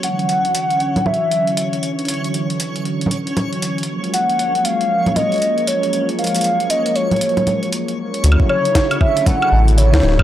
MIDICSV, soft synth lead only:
0, 0, Header, 1, 2, 480
1, 0, Start_track
1, 0, Tempo, 512821
1, 32, Time_signature, 4, 2, 24, 8
1, 9576, End_track
2, 0, Start_track
2, 0, Title_t, "Soft synth lead"
2, 0, Program_c, 0, 80
2, 32, Note_on_c, 0, 78, 115
2, 992, Note_on_c, 0, 76, 104
2, 1006, Note_off_c, 0, 78, 0
2, 1712, Note_off_c, 0, 76, 0
2, 3870, Note_on_c, 0, 78, 106
2, 4351, Note_on_c, 0, 77, 102
2, 4365, Note_off_c, 0, 78, 0
2, 4830, Note_on_c, 0, 75, 100
2, 4844, Note_off_c, 0, 77, 0
2, 5311, Note_on_c, 0, 73, 91
2, 5325, Note_off_c, 0, 75, 0
2, 5700, Note_off_c, 0, 73, 0
2, 5792, Note_on_c, 0, 77, 97
2, 6272, Note_on_c, 0, 75, 89
2, 6286, Note_off_c, 0, 77, 0
2, 6511, Note_on_c, 0, 73, 83
2, 6525, Note_off_c, 0, 75, 0
2, 7471, Note_off_c, 0, 73, 0
2, 7951, Note_on_c, 0, 73, 99
2, 8397, Note_off_c, 0, 73, 0
2, 8431, Note_on_c, 0, 76, 90
2, 8670, Note_on_c, 0, 78, 102
2, 8684, Note_off_c, 0, 76, 0
2, 9151, Note_on_c, 0, 73, 94
2, 9165, Note_off_c, 0, 78, 0
2, 9540, Note_off_c, 0, 73, 0
2, 9576, End_track
0, 0, End_of_file